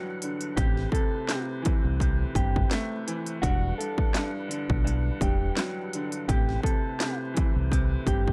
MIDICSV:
0, 0, Header, 1, 6, 480
1, 0, Start_track
1, 0, Tempo, 714286
1, 385, Time_signature, 4, 2, 24, 8
1, 5596, End_track
2, 0, Start_track
2, 0, Title_t, "Clean electric guitar"
2, 0, Program_c, 0, 27
2, 380, Note_on_c, 0, 67, 100
2, 598, Note_off_c, 0, 67, 0
2, 623, Note_on_c, 0, 69, 67
2, 974, Note_off_c, 0, 69, 0
2, 1586, Note_on_c, 0, 67, 80
2, 1801, Note_off_c, 0, 67, 0
2, 2297, Note_on_c, 0, 66, 102
2, 2517, Note_off_c, 0, 66, 0
2, 2540, Note_on_c, 0, 69, 70
2, 2893, Note_off_c, 0, 69, 0
2, 3513, Note_on_c, 0, 67, 75
2, 3726, Note_off_c, 0, 67, 0
2, 4222, Note_on_c, 0, 67, 94
2, 4440, Note_off_c, 0, 67, 0
2, 4459, Note_on_c, 0, 69, 74
2, 4812, Note_off_c, 0, 69, 0
2, 5429, Note_on_c, 0, 67, 84
2, 5596, Note_off_c, 0, 67, 0
2, 5596, End_track
3, 0, Start_track
3, 0, Title_t, "Tonewheel organ"
3, 0, Program_c, 1, 16
3, 0, Note_on_c, 1, 52, 71
3, 0, Note_on_c, 1, 62, 66
3, 0, Note_on_c, 1, 71, 82
3, 0, Note_on_c, 1, 78, 62
3, 363, Note_off_c, 1, 52, 0
3, 363, Note_off_c, 1, 62, 0
3, 363, Note_off_c, 1, 78, 0
3, 373, Note_on_c, 1, 57, 71
3, 373, Note_on_c, 1, 64, 60
3, 373, Note_on_c, 1, 72, 76
3, 2275, Note_off_c, 1, 71, 0
3, 2280, Note_off_c, 1, 57, 0
3, 2280, Note_off_c, 1, 64, 0
3, 2280, Note_off_c, 1, 72, 0
3, 2307, Note_on_c, 1, 52, 68
3, 2307, Note_on_c, 1, 62, 64
3, 2307, Note_on_c, 1, 71, 80
3, 2307, Note_on_c, 1, 78, 72
3, 4207, Note_off_c, 1, 52, 0
3, 4207, Note_off_c, 1, 62, 0
3, 4207, Note_off_c, 1, 78, 0
3, 4224, Note_on_c, 1, 72, 75
3, 4225, Note_on_c, 1, 57, 68
3, 4225, Note_on_c, 1, 64, 62
3, 5596, Note_off_c, 1, 57, 0
3, 5596, Note_off_c, 1, 64, 0
3, 5596, Note_off_c, 1, 71, 0
3, 5596, Note_off_c, 1, 72, 0
3, 5596, End_track
4, 0, Start_track
4, 0, Title_t, "Upright piano"
4, 0, Program_c, 2, 0
4, 0, Control_c, 2, 64, 127
4, 0, Note_on_c, 2, 43, 77
4, 0, Note_on_c, 2, 50, 82
4, 0, Note_on_c, 2, 54, 88
4, 147, Note_off_c, 2, 50, 0
4, 157, Note_on_c, 2, 50, 77
4, 383, Note_off_c, 2, 43, 0
4, 386, Note_off_c, 2, 54, 0
4, 390, Note_on_c, 2, 48, 86
4, 391, Note_off_c, 2, 50, 0
4, 393, Control_c, 2, 64, 0
4, 503, Control_c, 2, 64, 127
4, 611, Note_off_c, 2, 48, 0
4, 621, Note_on_c, 2, 48, 80
4, 867, Note_off_c, 2, 48, 0
4, 878, Note_on_c, 2, 48, 81
4, 1090, Note_on_c, 2, 52, 76
4, 1337, Note_off_c, 2, 48, 0
4, 1347, Note_on_c, 2, 48, 90
4, 1571, Note_off_c, 2, 48, 0
4, 1581, Note_on_c, 2, 48, 77
4, 1828, Note_on_c, 2, 57, 93
4, 2055, Note_off_c, 2, 52, 0
4, 2065, Note_on_c, 2, 52, 85
4, 2302, Note_on_c, 2, 43, 93
4, 2303, Note_off_c, 2, 48, 0
4, 2305, Note_off_c, 2, 52, 0
4, 2307, Note_off_c, 2, 57, 0
4, 2313, Control_c, 2, 64, 0
4, 2432, Control_c, 2, 64, 127
4, 2536, Note_off_c, 2, 43, 0
4, 2547, Note_on_c, 2, 43, 76
4, 2775, Note_off_c, 2, 43, 0
4, 2785, Note_on_c, 2, 43, 89
4, 3011, Note_on_c, 2, 50, 82
4, 3244, Note_off_c, 2, 43, 0
4, 3254, Note_on_c, 2, 43, 81
4, 3490, Note_off_c, 2, 43, 0
4, 3500, Note_on_c, 2, 43, 78
4, 3745, Note_on_c, 2, 54, 90
4, 3986, Note_off_c, 2, 50, 0
4, 3996, Note_on_c, 2, 50, 81
4, 4223, Note_off_c, 2, 43, 0
4, 4225, Note_off_c, 2, 54, 0
4, 4230, Note_on_c, 2, 48, 92
4, 4231, Note_off_c, 2, 50, 0
4, 4234, Control_c, 2, 64, 0
4, 4332, Control_c, 2, 64, 127
4, 4451, Note_off_c, 2, 48, 0
4, 4461, Note_on_c, 2, 48, 76
4, 4708, Note_off_c, 2, 48, 0
4, 4718, Note_on_c, 2, 48, 84
4, 4931, Note_on_c, 2, 52, 76
4, 5177, Note_off_c, 2, 48, 0
4, 5187, Note_on_c, 2, 48, 91
4, 5410, Note_off_c, 2, 48, 0
4, 5420, Note_on_c, 2, 48, 77
4, 5596, Note_off_c, 2, 48, 0
4, 5596, Note_off_c, 2, 52, 0
4, 5596, End_track
5, 0, Start_track
5, 0, Title_t, "Fingered electric bass"
5, 0, Program_c, 3, 33
5, 387, Note_on_c, 3, 33, 104
5, 571, Note_off_c, 3, 33, 0
5, 1242, Note_on_c, 3, 36, 87
5, 1507, Note_off_c, 3, 36, 0
5, 1582, Note_on_c, 3, 31, 98
5, 1768, Note_off_c, 3, 31, 0
5, 2307, Note_on_c, 3, 28, 106
5, 2491, Note_off_c, 3, 28, 0
5, 3158, Note_on_c, 3, 35, 93
5, 3425, Note_off_c, 3, 35, 0
5, 3503, Note_on_c, 3, 28, 91
5, 3688, Note_off_c, 3, 28, 0
5, 4228, Note_on_c, 3, 33, 108
5, 4411, Note_off_c, 3, 33, 0
5, 5081, Note_on_c, 3, 36, 86
5, 5347, Note_off_c, 3, 36, 0
5, 5422, Note_on_c, 3, 31, 99
5, 5596, Note_off_c, 3, 31, 0
5, 5596, End_track
6, 0, Start_track
6, 0, Title_t, "Drums"
6, 147, Note_on_c, 9, 42, 90
6, 214, Note_off_c, 9, 42, 0
6, 273, Note_on_c, 9, 42, 59
6, 340, Note_off_c, 9, 42, 0
6, 385, Note_on_c, 9, 36, 115
6, 388, Note_on_c, 9, 42, 97
6, 452, Note_off_c, 9, 36, 0
6, 455, Note_off_c, 9, 42, 0
6, 519, Note_on_c, 9, 38, 38
6, 586, Note_off_c, 9, 38, 0
6, 618, Note_on_c, 9, 36, 96
6, 636, Note_on_c, 9, 42, 71
6, 685, Note_off_c, 9, 36, 0
6, 703, Note_off_c, 9, 42, 0
6, 864, Note_on_c, 9, 38, 116
6, 867, Note_on_c, 9, 39, 89
6, 872, Note_on_c, 9, 42, 93
6, 932, Note_off_c, 9, 38, 0
6, 934, Note_off_c, 9, 39, 0
6, 939, Note_off_c, 9, 42, 0
6, 1109, Note_on_c, 9, 42, 80
6, 1114, Note_on_c, 9, 36, 101
6, 1177, Note_off_c, 9, 42, 0
6, 1181, Note_off_c, 9, 36, 0
6, 1345, Note_on_c, 9, 36, 81
6, 1354, Note_on_c, 9, 42, 85
6, 1412, Note_off_c, 9, 36, 0
6, 1421, Note_off_c, 9, 42, 0
6, 1580, Note_on_c, 9, 36, 99
6, 1585, Note_on_c, 9, 42, 83
6, 1648, Note_off_c, 9, 36, 0
6, 1653, Note_off_c, 9, 42, 0
6, 1721, Note_on_c, 9, 36, 93
6, 1788, Note_off_c, 9, 36, 0
6, 1821, Note_on_c, 9, 38, 110
6, 1823, Note_on_c, 9, 39, 89
6, 1833, Note_on_c, 9, 42, 71
6, 1888, Note_off_c, 9, 38, 0
6, 1890, Note_off_c, 9, 39, 0
6, 1900, Note_off_c, 9, 42, 0
6, 2068, Note_on_c, 9, 42, 90
6, 2135, Note_off_c, 9, 42, 0
6, 2194, Note_on_c, 9, 42, 61
6, 2261, Note_off_c, 9, 42, 0
6, 2306, Note_on_c, 9, 36, 117
6, 2309, Note_on_c, 9, 42, 96
6, 2373, Note_off_c, 9, 36, 0
6, 2376, Note_off_c, 9, 42, 0
6, 2557, Note_on_c, 9, 42, 75
6, 2625, Note_off_c, 9, 42, 0
6, 2674, Note_on_c, 9, 36, 97
6, 2741, Note_off_c, 9, 36, 0
6, 2785, Note_on_c, 9, 38, 117
6, 2787, Note_on_c, 9, 39, 92
6, 2792, Note_on_c, 9, 42, 97
6, 2852, Note_off_c, 9, 38, 0
6, 2854, Note_off_c, 9, 39, 0
6, 2859, Note_off_c, 9, 42, 0
6, 3030, Note_on_c, 9, 42, 84
6, 3097, Note_off_c, 9, 42, 0
6, 3156, Note_on_c, 9, 36, 97
6, 3223, Note_off_c, 9, 36, 0
6, 3274, Note_on_c, 9, 42, 84
6, 3341, Note_off_c, 9, 42, 0
6, 3500, Note_on_c, 9, 36, 105
6, 3505, Note_on_c, 9, 42, 84
6, 3568, Note_off_c, 9, 36, 0
6, 3572, Note_off_c, 9, 42, 0
6, 3741, Note_on_c, 9, 38, 113
6, 3743, Note_on_c, 9, 39, 89
6, 3753, Note_on_c, 9, 42, 71
6, 3808, Note_off_c, 9, 38, 0
6, 3810, Note_off_c, 9, 39, 0
6, 3821, Note_off_c, 9, 42, 0
6, 3988, Note_on_c, 9, 42, 88
6, 4055, Note_off_c, 9, 42, 0
6, 4114, Note_on_c, 9, 42, 59
6, 4181, Note_off_c, 9, 42, 0
6, 4226, Note_on_c, 9, 36, 112
6, 4229, Note_on_c, 9, 42, 96
6, 4293, Note_off_c, 9, 36, 0
6, 4296, Note_off_c, 9, 42, 0
6, 4360, Note_on_c, 9, 38, 38
6, 4427, Note_off_c, 9, 38, 0
6, 4458, Note_on_c, 9, 36, 96
6, 4477, Note_on_c, 9, 42, 75
6, 4525, Note_off_c, 9, 36, 0
6, 4544, Note_off_c, 9, 42, 0
6, 4705, Note_on_c, 9, 38, 115
6, 4707, Note_on_c, 9, 39, 89
6, 4712, Note_on_c, 9, 42, 96
6, 4772, Note_off_c, 9, 38, 0
6, 4775, Note_off_c, 9, 39, 0
6, 4779, Note_off_c, 9, 42, 0
6, 4950, Note_on_c, 9, 42, 80
6, 4954, Note_on_c, 9, 36, 101
6, 5017, Note_off_c, 9, 42, 0
6, 5021, Note_off_c, 9, 36, 0
6, 5185, Note_on_c, 9, 36, 83
6, 5194, Note_on_c, 9, 42, 84
6, 5252, Note_off_c, 9, 36, 0
6, 5262, Note_off_c, 9, 42, 0
6, 5420, Note_on_c, 9, 36, 103
6, 5425, Note_on_c, 9, 42, 83
6, 5488, Note_off_c, 9, 36, 0
6, 5493, Note_off_c, 9, 42, 0
6, 5561, Note_on_c, 9, 36, 90
6, 5596, Note_off_c, 9, 36, 0
6, 5596, End_track
0, 0, End_of_file